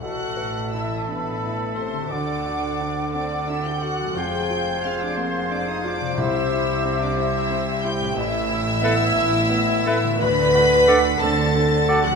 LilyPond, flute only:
\new Staff \with { instrumentName = "Flute" } { \time 6/8 \key d \mixolydian \tempo 4. = 59 a''2. | fis''2. | f''2. | e''2. |
r4 e''16 r4 r16 e''16 r16 | r4 fis''16 r4 r16 fis''16 r16 | }